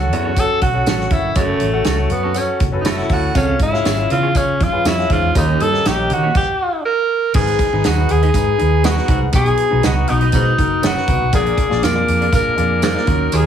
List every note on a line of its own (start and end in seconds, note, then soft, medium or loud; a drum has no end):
0.00 0.12 C#2 medium
0.00 0.29 C#4 medium
0.00 0.29 F#4 medium
0.00 0.41 F#4 medium
0.00 0.29 A4 medium
0.00 0.29 F#5 medium
0.12 0.32 E2 medium
0.12 0.49 F#2 loud
0.12 closed hi-hat medium
0.25 0.33 C#4 soft
0.25 0.33 F#4 medium
0.25 0.33 A4 soft
0.25 0.32 C#5 medium
0.36 0.67 C#4 medium
0.36 0.67 F#4 medium
0.36 0.67 A4 medium
0.36 0.62 A4 loud
0.36 0.67 F#5 medium
0.36 kick medium
0.36 closed hi-hat loud
0.36 tambourine medium
0.61 0.81 B1 medium
0.61 1.14 F#4 loud
0.61 kick medium
0.61 closed hi-hat medium
0.73 0.94 C#4 medium
0.73 0.94 F#4 medium
0.73 0.94 A4 medium
0.73 0.94 F#5 medium
0.86 1.05 A1 medium
0.86 0.97 C#4 medium
0.86 0.97 F#4 medium
0.86 0.97 A4 medium
0.86 0.98 C#5 medium
0.86 snare loud
0.86 closed hi-hat medium
0.86 tambourine medium
0.98 1.28 C#4 medium
0.98 1.28 F#4 medium
0.98 1.29 A4 medium
0.98 1.29 F#5 medium
0.98 snare soft
1.10 1.30 G1 medium
1.10 1.31 F#2 medium
1.10 1.37 E4 medium
1.10 kick loud
1.10 closed hi-hat medium
1.35 1.55 F#1 loud
1.35 1.71 F#2 loud
1.35 2.13 A3 medium
1.35 1.66 C#4 medium
1.35 1.66 F#4 medium
1.35 1.66 A4 medium
1.35 1.66 F#5 medium
1.35 kick loud
1.35 closed hi-hat loud
1.35 tambourine medium
1.60 1.80 A1 medium
1.60 closed hi-hat medium
1.73 1.93 C#4 medium
1.73 1.93 F#4 medium
1.73 1.93 A4 medium
1.73 1.94 F#5 medium
1.84 2.05 C#2 loud
1.84 1.96 C#4 medium
1.84 1.96 F#4 medium
1.84 1.97 A4 loud
1.84 1.97 C#5 loud
1.84 snare loud
1.84 closed hi-hat medium
1.84 tambourine loud
1.98 2.28 C#4 medium
1.98 2.28 F#4 medium
1.98 2.28 A4 medium
1.98 2.28 F#5 medium
2.10 2.38 F#2 loud
2.10 2.39 B3 medium
2.10 closed hi-hat medium
2.23 2.32 C#4 medium
2.23 2.32 F#4 medium
2.23 2.31 A4 medium
2.23 2.31 C#5 medium
2.34 2.65 C#4 medium
2.34 2.62 C#4 medium
2.34 2.65 F#4 medium
2.34 2.65 A4 medium
2.34 2.65 F#5 medium
2.34 closed hi-hat loud
2.34 tambourine medium
2.60 2.70 F#1 medium
2.60 kick medium
2.60 closed hi-hat medium
2.72 3.01 F#1 medium
2.72 2.92 C#4 medium
2.72 2.93 F#4 medium
2.72 2.93 A4 medium
2.72 2.93 B4 medium
2.81 2.89 D#4 medium
2.81 closed hi-hat medium
2.85 3.05 A2 loud
2.85 2.95 C#4 medium
2.85 3.15 E4 medium
2.85 2.96 F#4 medium
2.85 2.96 A4 medium
2.85 2.96 C#5 medium
2.85 snare loud
2.85 tambourine loud
2.97 3.27 C#4 medium
2.97 3.27 F#4 medium
2.97 3.27 A4 medium
2.97 3.28 F#5 medium
2.97 snare soft
3.09 3.29 D2 medium
3.09 3.31 A2 medium
3.09 kick loud
3.09 open hi-hat medium
3.14 3.38 F#4 medium
3.34 3.54 C#2 loud
3.34 3.55 F2 medium
3.34 4.06 C#3 medium
3.34 3.65 C#4 medium
3.34 3.61 C#4 medium
3.34 3.65 F4 medium
3.34 3.65 G#4 medium
3.34 3.65 F5 medium
3.34 kick loud
3.34 closed hi-hat loud
3.34 tambourine medium
3.59 3.79 G#2 medium
3.59 4.13 E4 loud
3.59 kick loud
3.59 closed hi-hat medium
3.72 3.92 C#4 medium
3.72 3.93 F4 medium
3.72 3.93 G#4 medium
3.72 3.93 F5 medium
3.72 snare soft
3.85 4.05 G#1 medium
3.85 3.95 C#4 medium
3.85 3.95 F4 medium
3.85 3.96 G#4 loud
3.85 3.96 C#5 medium
3.85 snare loud
3.85 closed hi-hat medium
3.85 tambourine medium
3.97 4.27 C#4 medium
3.97 4.27 F4 medium
3.97 4.27 G#4 medium
3.97 4.27 F5 medium
4.10 4.30 E2 medium
4.10 4.62 C#3 loud
4.10 4.39 F4 loud
4.10 closed hi-hat medium
4.23 4.31 C#4 soft
4.23 4.31 F4 medium
4.23 4.31 G#4 medium
4.23 4.30 C#5 medium
4.35 4.65 C#4 medium
4.35 4.65 F4 medium
4.35 4.65 G#4 medium
4.35 4.65 F5 medium
4.35 kick medium
4.35 closed hi-hat loud
4.35 tambourine medium
4.60 4.79 F#2 medium
4.60 4.89 F4 loud
4.60 kick medium
4.60 closed hi-hat medium
4.72 4.92 C#4 medium
4.72 4.92 F4 medium
4.72 4.92 G#4 medium
4.72 4.93 B4 medium
4.85 5.04 F2 loud
4.85 4.95 C#4 medium
4.85 5.14 E4 loud
4.85 4.95 F4 medium
4.85 4.96 G#4 medium
4.85 4.96 C#5 loud
4.85 snare loud
4.85 closed hi-hat medium
4.85 tambourine loud
4.98 5.27 C#4 medium
4.98 5.28 F4 medium
4.98 5.28 G#4 medium
4.98 5.28 F5 medium
4.98 snare soft
5.10 5.29 E2 medium
5.10 5.31 G#2 medium
5.10 5.36 F4 loud
5.10 kick loud
5.10 closed hi-hat medium
5.35 5.70 D#2 loud
5.35 5.54 D#2 loud
5.35 6.06 D#3 medium
5.35 5.64 C#4 medium
5.35 5.64 D#4 loud
5.35 5.64 G4 medium
5.35 5.65 A#4 medium
5.35 5.65 D#5 medium
5.35 kick loud
5.35 closed hi-hat loud
5.35 tambourine medium
5.60 5.79 G2 loud
5.60 5.89 A4 loud
5.60 closed hi-hat medium
5.72 5.92 C#4 medium
5.72 5.92 G4 medium
5.72 5.92 A#4 medium
5.72 5.92 D#5 medium
5.72 snare soft
5.85 6.12 A#1 medium
5.85 5.95 A#3 medium
5.85 5.95 D#4 medium
5.85 5.95 G4 medium
5.85 6.14 G4 loud
5.85 5.96 C#5 loud
5.85 snare loud
5.85 closed hi-hat medium
5.85 tambourine medium
5.97 6.27 C#4 medium
5.97 6.27 G4 medium
5.97 6.27 A#4 medium
5.97 6.27 D#5 medium
6.10 6.29 D#3 loud
6.10 6.36 F#4 loud
6.10 closed hi-hat medium
6.23 6.31 A#3 soft
6.23 6.31 D#4 medium
6.23 6.30 G4 medium
6.23 6.30 C#5 medium
6.35 6.82 G4 medium
6.35 kick loud
6.35 crash medium
6.85 7.31 A#4 loud
7.34 7.53 G#1 loud
7.34 8.05 G#2 medium
7.34 7.70 G#2 medium
7.34 7.64 D#4 medium
7.34 7.64 G#4 medium
7.34 7.87 G#4 loud
7.34 7.64 B4 medium
7.34 kick loud
7.34 crash loud
7.34 tambourine medium
7.47 closed hi-hat medium
7.59 kick loud
7.59 closed hi-hat medium
7.73 7.82 G#1 loud
7.73 7.92 D#4 medium
7.73 7.92 G#4 medium
7.73 7.92 B4 medium
7.84 8.04 D#2 loud
7.84 7.94 D#4 medium
7.84 8.13 F#4 loud
7.84 7.94 G#4 medium
7.84 7.95 B4 medium
7.84 7.95 D#5 loud
7.84 snare loud
7.84 closed hi-hat medium
7.84 tambourine medium
7.97 8.26 D#4 medium
7.97 8.27 G#4 medium
7.97 8.27 B4 medium
8.09 8.29 D#2 medium
8.09 8.87 G#4 loud
8.09 closed hi-hat medium
8.22 8.30 D#4 medium
8.22 8.30 G#4 medium
8.22 8.30 B4 medium
8.22 8.30 D#5 medium
8.22 closed hi-hat medium
8.34 8.53 G#2 loud
8.34 8.54 D#4 medium
8.34 8.54 G#4 medium
8.34 8.54 B4 medium
8.34 kick medium
8.34 closed hi-hat loud
8.34 tambourine medium
8.58 8.97 D#2 medium
8.58 8.88 D#4 medium
8.58 8.88 G#4 medium
8.58 8.89 B4 medium
8.58 closed hi-hat medium
8.84 9.04 B2 loud
8.84 8.94 D#4 medium
8.84 9.21 F#4 loud
8.84 8.94 G#4 medium
8.84 8.94 B4 medium
8.84 8.95 D#5 medium
8.84 snare loud
8.84 closed hi-hat medium
8.84 tambourine loud
8.95 9.25 D#4 medium
8.95 9.25 G#4 medium
8.95 9.26 B4 medium
8.95 snare soft
9.08 9.27 C2 loud
9.08 9.28 G#2 medium
9.08 kick loud
9.08 closed hi-hat medium
9.32 9.52 B1 loud
9.32 10.04 B2 medium
9.32 9.54 B2 medium
9.32 9.62 D#4 medium
9.32 9.63 F#4 medium
9.32 9.87 G#4 loud
9.32 9.63 B4 medium
9.32 kick loud
9.32 closed hi-hat loud
9.32 tambourine medium
9.46 closed hi-hat medium
9.57 closed hi-hat medium
9.70 9.81 B1 loud
9.70 9.90 D#4 medium
9.70 9.90 F#4 medium
9.70 9.91 B4 medium
9.83 10.03 C#2 medium
9.83 9.93 D#4 medium
9.83 9.94 F#4 medium
9.83 10.10 F#4 loud
9.83 9.94 B4 medium
9.83 9.94 D#5 loud
9.83 snare loud
9.83 closed hi-hat medium
9.83 tambourine medium
9.95 10.25 D#4 medium
9.95 10.25 F#4 medium
9.95 10.26 B4 medium
10.07 10.28 B1 loud
10.07 10.28 B2 medium
10.07 10.83 D#4 loud
10.07 closed hi-hat medium
10.21 10.30 D#4 medium
10.21 10.30 F#4 medium
10.21 10.29 B4 medium
10.21 10.29 D#5 medium
10.21 closed hi-hat medium
10.32 10.54 G#2 loud
10.32 10.52 B2 loud
10.32 10.53 D#4 medium
10.32 10.53 F#4 medium
10.32 10.54 B4 medium
10.32 kick loud
10.32 closed hi-hat loud
10.32 tambourine medium
10.58 10.77 F#1 loud
10.58 10.88 D#4 medium
10.58 10.88 F#4 medium
10.58 10.88 A#4 medium
10.58 kick medium
10.58 closed hi-hat medium
10.82 10.93 F#1 loud
10.82 11.03 F#2 loud
10.82 10.93 D#4 medium
10.82 10.94 F#4 medium
10.82 10.94 B4 medium
10.82 10.94 D#5 medium
10.82 snare loud
10.82 closed hi-hat medium
10.82 tambourine loud
10.86 11.31 F#4 loud
10.95 11.25 D#4 medium
10.95 11.25 F#4 medium
10.95 11.26 B4 medium
10.95 snare soft
11.07 11.17 C2 medium
11.07 11.28 B2 medium
11.07 kick loud
11.07 closed hi-hat medium
11.22 11.31 B1 medium
11.33 11.52 A#1 loud
11.33 11.68 A#2 loud
11.33 12.04 A#2 medium
11.33 11.63 A#3 medium
11.33 11.63 D4 medium
11.33 11.63 F4 medium
11.33 11.63 G#4 medium
11.33 11.85 G#4 loud
11.33 11.64 D5 medium
11.33 kick loud
11.33 closed hi-hat loud
11.33 tambourine medium
11.46 closed hi-hat soft
11.58 kick loud
11.58 closed hi-hat medium
11.70 11.81 A#1 loud
11.70 11.90 A#3 medium
11.70 11.90 D4 medium
11.70 11.90 F4 medium
11.70 11.91 G#4 medium
11.70 11.91 D5 medium
11.70 snare soft
11.83 12.02 F2 loud
11.83 11.93 A#3 medium
11.83 11.93 F4 medium
11.83 11.94 G#4 loud
11.83 12.33 A#4 loud
11.83 11.94 D5 loud
11.83 snare loud
11.83 closed hi-hat medium
11.83 tambourine loud
11.95 12.25 A#3 medium
11.95 12.25 D4 medium
11.95 12.25 F4 medium
11.95 12.25 G#4 medium
11.95 12.25 D5 medium
12.08 12.27 F2 medium
12.08 closed hi-hat medium
12.21 12.29 A#3 soft
12.21 12.29 F4 medium
12.21 12.29 G#4 medium
12.21 12.28 D5 medium
12.21 closed hi-hat medium
12.32 12.52 A#2 loud
12.32 12.52 A#3 medium
12.32 12.53 D4 medium
12.32 12.53 F4 medium
12.32 12.53 G#4 medium
12.32 12.80 A#4 loud
12.32 12.53 D5 medium
12.32 kick medium
12.32 closed hi-hat loud
12.32 tambourine medium
12.56 12.95 F2 medium
12.56 12.87 A#3 medium
12.56 12.87 D4 medium
12.56 12.87 F4 medium
12.56 12.87 G#4 medium
12.56 12.87 D5 medium
12.56 closed hi-hat medium
12.82 13.03 G#2 loud
12.82 12.93 A#3 medium
12.82 12.93 F4 medium
12.82 12.93 G#4 loud
12.82 13.37 A#4 loud
12.82 12.93 D5 medium
12.82 snare loud
12.82 closed hi-hat medium
12.82 tambourine loud
12.94 13.07 A#3 medium
12.94 13.08 D4 medium
12.94 13.08 F4 medium
12.94 13.08 G#4 medium
12.94 13.08 D5 loud
12.94 snare soft
13.07 13.26 D#2 loud
13.07 13.27 F#2 medium
13.07 13.46 D#3 medium
13.07 13.46 D#4 medium
13.07 13.46 F#4 medium
13.07 13.46 A#4 loud
13.07 kick loud
13.07 closed hi-hat medium
13.32 13.46 D#2 medium
13.32 13.46 D#2 loud
13.32 13.46 G#4 loud
13.32 closed hi-hat loud
13.32 tambourine medium